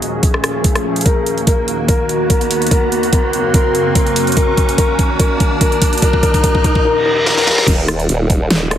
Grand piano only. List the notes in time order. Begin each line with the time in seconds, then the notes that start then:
Already playing: G#4
1.06 A#4
1.47 A#4
1.89 A#4
2.30 A#4
2.71 A#4
3.13 A#4
3.54 A#4
3.95 A#4
4.37 A#4
4.78 A#4
5.20 A#4
5.61 A#4
6.02 A#4
6.23 A#4
6.44 A#4
6.64 A#4
6.85 A#4
7.06 A#4
7.26 A#4
7.47 A#4